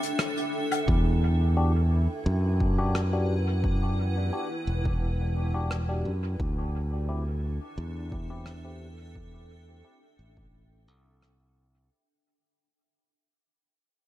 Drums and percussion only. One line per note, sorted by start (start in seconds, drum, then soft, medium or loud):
0.03 closed hi-hat medium
0.19 cross-stick loud
0.19 closed hi-hat medium
0.37 closed hi-hat soft
0.72 closed hi-hat medium
0.72 low woodblock medium
0.88 kick loud
2.60 kick loud
2.95 cross-stick medium
3.64 kick loud
4.85 kick loud
5.71 cross-stick medium
6.40 kick loud
8.12 kick loud
8.46 cross-stick medium
9.15 kick loud
10.37 kick medium
11.22 cross-stick medium